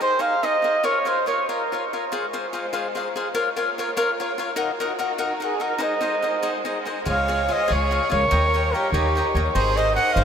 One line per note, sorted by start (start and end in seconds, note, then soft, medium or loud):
0.01 0.13 D#4 medium
0.01 0.13 G#4 medium
0.01 0.22 C5 loud
0.01 0.14 C5 medium
0.01 0.13 D#5 medium
0.19 0.34 D#4 medium
0.19 0.34 G#4 medium
0.19 0.34 C5 medium
0.19 0.34 D#5 medium
0.19 0.45 F5 loud
0.43 0.55 D#4 medium
0.43 0.56 G#4 medium
0.43 0.56 C5 medium
0.43 0.86 D#5 loud
0.43 0.56 D#5 medium
0.62 0.75 D#4 medium
0.62 0.76 G#4 medium
0.62 0.76 C5 soft
0.62 0.76 D#5 medium
0.83 0.97 F4 medium
0.83 0.97 A#4 medium
0.83 0.98 C#5 medium
0.83 1.09 C#5 medium
0.83 0.98 F5 medium
1.05 1.18 F4 medium
1.05 1.18 A#4 medium
1.05 1.27 C5 medium
1.05 1.18 C#5 medium
1.05 1.19 F5 medium
1.26 1.39 F4 medium
1.26 1.39 A#4 medium
1.26 1.39 C#5 medium
1.26 1.46 C#5 medium
1.26 1.40 F5 medium
1.49 1.62 F4 medium
1.49 1.93 A#4 medium
1.49 1.62 A#4 medium
1.49 1.62 C#5 medium
1.49 1.62 F5 medium
1.72 1.83 F4 medium
1.72 1.84 A#4 medium
1.72 1.84 C#5 medium
1.72 1.84 F5 medium
1.93 2.04 F4 medium
1.93 2.04 A#4 soft
1.93 2.04 C#5 medium
1.93 2.04 F5 medium
2.12 3.35 G#3 medium
2.12 2.25 F4 medium
2.12 3.35 F4 medium
2.12 2.25 G#4 medium
2.12 3.35 C5 medium
2.12 2.26 C5 medium
2.12 2.25 F5 medium
2.33 2.45 F4 medium
2.33 2.46 G#4 medium
2.33 2.46 C5 medium
2.33 2.46 F5 medium
2.53 2.65 F4 medium
2.53 2.65 G#4 medium
2.53 2.65 C5 medium
2.53 2.66 F5 medium
2.73 2.86 F4 medium
2.73 2.87 G#4 medium
2.73 2.87 C5 medium
2.73 2.87 F5 medium
2.95 3.07 F4 medium
2.95 3.07 G#4 medium
2.95 3.07 C5 medium
2.95 3.08 F5 medium
3.16 3.27 F4 medium
3.16 3.27 G#4 medium
3.16 3.28 C5 medium
3.16 3.28 F5 medium
3.34 4.57 A#3 medium
3.34 3.48 F4 medium
3.34 4.57 F4 medium
3.34 3.48 A#4 medium
3.34 3.48 C#5 medium
3.34 4.57 C#5 medium
3.34 3.48 F5 loud
3.56 3.69 F4 medium
3.56 3.69 A#4 medium
3.56 3.69 C#5 medium
3.56 3.70 F5 medium
3.78 3.89 F4 medium
3.78 3.90 A#4 medium
3.78 3.90 C#5 medium
3.78 3.90 F5 medium
3.97 4.10 F4 medium
3.97 4.10 A#4 loud
3.97 4.10 C#5 loud
3.97 4.10 F5 loud
4.20 4.31 F4 medium
4.20 4.31 A#4 medium
4.20 4.31 C#5 medium
4.20 4.31 F5 medium
4.38 4.50 F4 medium
4.38 4.50 A#4 medium
4.38 4.50 C#5 medium
4.38 4.51 F5 medium
4.56 4.70 D#4 medium
4.56 7.04 D#4 medium
4.56 5.78 F#4 medium
4.56 5.79 A#4 medium
4.56 4.70 A#4 medium
4.56 4.70 D#5 medium
4.56 4.71 F#5 loud
4.80 4.92 D#4 medium
4.80 4.92 A#4 medium
4.80 4.92 D#5 medium
4.80 4.92 F#5 medium
4.99 5.11 D#4 medium
4.99 5.11 A#4 medium
4.99 5.11 D#5 medium
4.99 5.11 F#5 medium
5.18 5.32 D#4 medium
5.18 5.32 A#4 medium
5.18 5.32 D#5 medium
5.18 5.32 F#5 loud
5.40 5.52 D#4 medium
5.40 5.63 G#4 medium
5.40 5.53 A#4 medium
5.40 5.53 D#5 medium
5.40 5.53 F#5 medium
5.60 5.72 D#4 medium
5.60 5.73 A#4 medium
5.60 5.84 A#4 medium
5.60 5.73 D#5 medium
5.60 5.73 F#5 medium
5.78 8.29 G#3 medium
5.78 5.93 D#4 medium
5.78 5.94 G#4 medium
5.78 5.94 C5 medium
5.78 7.06 C5 medium
5.78 5.94 D#5 medium
5.78 6.68 D#5 medium
6.01 6.14 D#4 medium
6.01 6.15 G#4 medium
6.01 6.15 C5 medium
6.01 6.15 D#5 medium
6.22 6.35 D#4 medium
6.22 6.35 G#4 soft
6.22 6.35 C5 medium
6.22 6.36 D#5 medium
6.42 6.57 D#4 medium
6.42 6.57 G#4 medium
6.42 6.57 C5 medium
6.42 6.57 D#5 medium
6.65 6.78 D#4 medium
6.65 6.78 G#4 medium
6.65 6.78 C5 medium
6.65 6.79 D#5 medium
6.85 6.98 D#4 medium
6.85 6.99 G#4 medium
6.85 6.99 C5 medium
6.85 6.99 D#5 medium
7.05 7.48 C#2 medium
7.05 7.20 F4 medium
7.05 7.21 G#4 medium
7.05 7.21 C#5 medium
7.05 7.53 C#5 medium
7.05 8.31 C#5 medium
7.05 7.21 F5 medium
7.09 8.32 F4 medium
7.09 7.54 F5 loud
7.28 7.41 F4 medium
7.28 7.41 G#4 medium
7.28 7.42 C#5 medium
7.28 7.42 F5 medium
7.48 7.61 F4 medium
7.48 7.61 G#4 medium
7.48 7.72 C5 medium
7.48 7.61 C#5 medium
7.48 7.74 D#5 medium
7.48 7.62 F5 medium
7.68 7.98 C#2 medium
7.68 7.82 F4 medium
7.68 7.83 G#4 medium
7.68 8.12 G#4 medium
7.68 7.83 C#5 medium
7.68 7.83 F5 medium
7.73 8.12 C#5 medium
7.91 8.04 F4 medium
7.91 8.04 G#4 medium
7.91 8.04 C#5 medium
7.91 8.04 F5 medium
8.09 8.25 C#2 medium
8.09 8.23 F4 medium
8.09 8.23 G#4 medium
8.09 8.75 A#4 medium
8.09 8.24 C#5 medium
8.09 8.74 C#5 loud
8.09 8.24 F5 medium
8.30 8.72 D#2 medium
8.30 9.53 G3 medium
8.30 10.24 D#4 medium
8.30 8.45 C#5 medium
8.30 9.54 C#5 medium
8.30 8.45 D#5 medium
8.30 8.45 G5 medium
8.30 8.45 A#5 medium
8.54 8.66 C#5 medium
8.54 8.66 D#5 medium
8.54 8.67 G5 medium
8.54 8.67 A#5 medium
8.73 8.92 G4 medium
8.73 8.92 A#4 medium
8.73 8.86 C#5 medium
8.73 8.86 D#5 medium
8.73 8.86 G5 medium
8.73 8.87 A#5 medium
8.92 9.20 D#2 medium
8.92 9.36 D#4 medium
8.92 9.37 G4 medium
8.92 9.07 C#5 medium
8.92 9.07 D#5 medium
8.92 9.07 G5 medium
8.92 9.07 A#5 medium
9.15 9.27 C#5 soft
9.15 9.28 D#5 medium
9.15 9.28 G5 medium
9.15 9.28 A#5 medium
9.35 9.48 D#2 medium
9.35 9.47 C#5 medium
9.35 9.48 D#5 medium
9.35 9.48 G5 medium
9.35 9.48 A#5 medium
9.54 9.96 G#1 medium
9.54 10.24 G#3 medium
9.54 9.69 D#4 medium
9.54 9.69 G#4 medium
9.54 9.79 G#4 medium
9.54 9.78 C5 medium
9.54 10.24 C5 medium
9.54 9.69 C5 medium
9.54 9.69 D#5 loud
9.77 9.89 D#4 medium
9.77 9.89 G#4 medium
9.77 9.95 C5 medium
9.77 9.90 C5 medium
9.77 9.95 D#5 loud
9.77 9.90 D#5 medium
9.95 10.09 D#4 medium
9.95 10.10 G#4 medium
9.95 10.10 C5 medium
9.95 10.20 D#5 medium
9.95 10.10 D#5 medium
9.95 10.14 F#5 loud
10.13 10.24 G#1 loud
10.13 10.24 D#4 medium
10.13 10.24 G#4 medium
10.13 10.24 F5 loud
10.17 10.24 C5 medium
10.17 10.24 D#5 medium